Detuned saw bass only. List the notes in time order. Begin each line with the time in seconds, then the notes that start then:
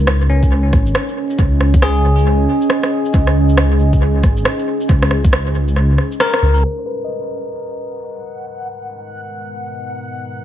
Already playing: C#2
0.29 C#2
0.73 G#1
1.39 C#2
2.04 C#2
3.14 C#2
3.80 C#2
4.23 G#1
4.89 C#2
5.55 C#2
6.42 C#2